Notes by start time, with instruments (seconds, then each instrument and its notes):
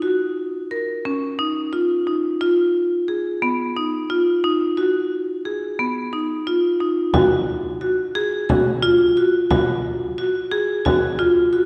0.02 marimba F#4
0.71 marimba A#4
1.05 marimba C#4
1.39 marimba D#4
1.73 marimba F4
2.07 marimba D#4
2.41 marimba F4
3.08 marimba G#4
3.42 marimba B3
3.77 marimba D#4
4.10 marimba F4
4.44 marimba D#4
4.77 marimba F#4
5.45 marimba G#4
5.79 marimba B3
6.13 marimba D#4
6.47 marimba F4
6.80 marimba D#4
7.14 marimba F#4, frame drum
7.81 marimba F#4
8.15 marimba G#4
8.49 marimba F#4, frame drum
8.82 marimba F4
9.17 marimba F#4
9.51 marimba F#4, frame drum
10.18 marimba F#4
10.52 marimba G#4
10.85 marimba F#4, frame drum
11.19 marimba F4
11.53 marimba F#4